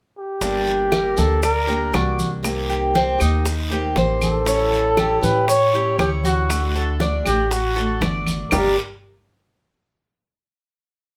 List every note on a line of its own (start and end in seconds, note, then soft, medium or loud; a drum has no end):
0.18 1.20 G4 medium
0.41 1.13 G1 medium
0.41 0.91 D3 medium
0.41 0.90 G3 medium
0.41 0.91 A#3 medium
0.41 0.91 D4 medium
0.41 0.92 D4 medium
0.41 0.92 G4 medium
0.41 high bongo medium
0.41 high conga soft
0.41 long guiro medium
0.41 maracas medium
0.66 high conga soft
0.66 maracas soft
0.91 1.16 G3 soft
0.91 1.17 A#3 soft
0.91 1.16 D4 soft
0.91 1.15 G4 medium
0.91 1.41 A#4 medium
0.91 high bongo medium
0.91 high conga medium
0.91 short guiro medium
0.91 claves medium
0.91 maracas soft
1.16 1.90 D2 medium
1.16 1.42 G3 soft
1.16 1.42 A#3 medium
1.16 1.42 D4 medium
1.16 1.41 G4 medium
1.16 1.43 A4 medium
1.16 high conga medium
1.16 short guiro medium
1.16 maracas medium
1.43 1.96 A#4 loud
1.43 1.67 D5 medium
1.43 muted steel-string acoustic guitar stroke soft
1.43 high bongo medium
1.43 high conga soft
1.43 long guiro medium
1.43 maracas medium
1.67 1.91 G3 medium
1.67 1.92 A#3 medium
1.67 1.92 D4 medium
1.67 1.92 G4 medium
1.67 1.93 A#4 medium
1.67 high conga soft
1.67 maracas soft
1.92 3.14 C2 medium
1.92 2.42 G3 soft
1.92 2.43 A#3 soft
1.92 2.43 D4 soft
1.92 2.32 F#4 medium
1.92 2.18 D5 medium
1.92 high bongo medium
1.92 low bongo medium
1.92 high conga medium
1.92 short guiro medium
1.92 claves medium
1.92 maracas soft
2.19 high conga medium
2.19 short guiro medium
2.19 maracas medium
2.43 2.93 C3 medium
2.43 2.93 D#3 medium
2.43 2.94 A#3 medium
2.43 2.94 C4 medium
2.43 2.94 G4 medium
2.43 high bongo medium
2.43 high conga soft
2.43 long guiro medium
2.43 claves medium
2.43 maracas medium
2.70 2.94 G4 medium
2.70 high bongo soft
2.70 high conga soft
2.70 maracas soft
2.94 3.19 D#3 soft
2.94 3.19 A#3 soft
2.94 3.20 C4 medium
2.94 3.18 C4 soft
2.94 3.17 G4 medium
2.94 high bongo medium
2.94 high conga medium
2.94 short guiro medium
2.94 maracas soft
3.18 3.92 D#2 medium
3.18 3.44 D#3 soft
3.18 3.44 A#3 medium
3.18 3.44 C4 medium
3.18 3.70 D#4 medium
3.18 3.44 G4 medium
3.18 high bongo soft
3.18 high conga soft
3.18 short guiro medium
3.18 claves medium
3.18 maracas medium
3.45 muted steel-string acoustic guitar stroke medium
3.45 high bongo medium
3.45 high conga soft
3.45 long guiro medium
3.45 maracas medium
3.70 3.94 D#3 medium
3.70 3.96 A#3 medium
3.70 3.95 C4 medium
3.70 3.95 G4 medium
3.70 3.96 G4 medium
3.70 high bongo soft
3.70 high conga soft
3.70 maracas soft
3.96 5.16 A1 medium
3.96 4.45 D#3 soft
3.96 4.46 A#3 soft
3.96 4.46 C4 soft
3.96 4.47 G4 medium
3.96 4.46 C5 medium
3.96 high bongo medium
3.96 low bongo medium
3.96 high conga medium
3.96 short guiro medium
3.96 maracas soft
4.21 5.19 A4 medium
4.21 high conga medium
4.21 short guiro medium
4.21 claves medium
4.21 maracas medium
4.45 4.96 E3 medium
4.45 4.96 G3 medium
4.45 4.96 C#4 medium
4.45 4.97 E4 medium
4.45 high bongo medium
4.45 high conga soft
4.45 long guiro medium
4.45 maracas medium
4.73 high conga soft
4.73 maracas soft
4.97 5.21 E3 soft
4.97 5.22 G3 medium
4.97 5.22 C#4 soft
4.97 5.20 E4 medium
4.97 5.47 G4 medium
4.97 high bongo medium
4.97 high conga medium
4.97 short guiro medium
4.97 claves medium
4.97 maracas soft
5.21 5.95 A2 medium
5.21 5.47 G3 soft
5.21 5.47 C#4 medium
5.21 5.46 E4 medium
5.21 5.46 B4 medium
5.21 high conga medium
5.21 short guiro medium
5.21 maracas medium
5.48 5.95 C#5 loud
5.48 5.73 C#5 medium
5.48 muted steel-string acoustic guitar stroke soft
5.48 high bongo medium
5.48 high conga soft
5.48 long guiro medium
5.48 maracas medium
5.73 5.98 G3 medium
5.73 5.98 C#4 medium
5.73 5.98 E4 medium
5.73 5.99 G4 medium
5.73 high conga soft
5.73 maracas soft
5.98 7.19 D2 medium
5.98 6.48 E3 soft
5.98 6.48 G3 soft
5.98 6.49 C#4 soft
5.98 6.49 E4 medium
5.98 6.11 G4 medium
5.98 6.24 C#5 medium
5.98 high bongo medium
5.98 low bongo medium
5.98 high conga medium
5.98 short guiro medium
5.98 claves medium
5.98 maracas soft
6.24 6.96 F#4 medium
6.24 6.74 F#4 medium
6.24 high conga medium
6.24 short guiro medium
6.24 maracas medium
6.49 6.98 D3 medium
6.49 6.99 A3 medium
6.49 7.00 D4 medium
6.49 7.00 F#4 medium
6.49 high bongo medium
6.49 high conga soft
6.49 long guiro medium
6.49 claves medium
6.49 maracas medium
6.75 7.00 A4 medium
6.75 high bongo soft
6.75 high conga soft
6.75 maracas soft
6.99 7.24 D3 soft
6.99 7.24 A3 soft
6.99 7.25 D4 soft
6.99 7.25 D4 medium
6.99 7.25 F#4 medium
6.99 high bongo medium
6.99 high conga medium
6.99 short guiro medium
6.99 maracas soft
7.25 7.98 A1 medium
7.25 7.50 A3 soft
7.25 7.51 D4 medium
7.25 7.50 F#4 medium
7.25 7.75 F#4 medium
7.25 7.53 G4 medium
7.25 high bongo soft
7.25 high conga soft
7.25 short guiro medium
7.25 claves medium
7.25 maracas medium
7.51 8.02 F#4 medium
7.51 muted steel-string acoustic guitar stroke medium
7.51 high bongo medium
7.51 high conga soft
7.51 long guiro medium
7.51 maracas medium
7.76 8.00 A3 medium
7.76 8.01 D4 medium
7.76 8.00 F#4 medium
7.76 8.01 A4 medium
7.76 high bongo soft
7.76 high conga soft
7.76 maracas soft
8.01 8.46 G1 medium
8.01 8.51 D3 soft
8.01 8.51 A3 soft
8.01 8.51 D4 soft
8.01 8.52 F#4 soft
8.01 8.50 D5 medium
8.01 high bongo medium
8.01 low bongo medium
8.01 high conga medium
8.01 short guiro medium
8.01 maracas soft
8.26 high conga medium
8.26 short guiro medium
8.26 claves medium
8.26 maracas medium
8.51 8.75 G1 medium
8.51 8.72 G2 medium
8.51 8.72 D3 medium
8.51 8.75 G3 medium
8.51 8.72 G3 medium
8.51 8.73 A#3 medium
8.51 8.75 D4 medium
8.51 8.73 D4 medium
8.51 8.76 G4 medium
8.51 8.73 G4 medium
8.51 8.76 A#4 medium
8.51 low bongo medium
8.51 low conga medium
8.51 long guiro medium
8.51 claves medium
8.51 maracas medium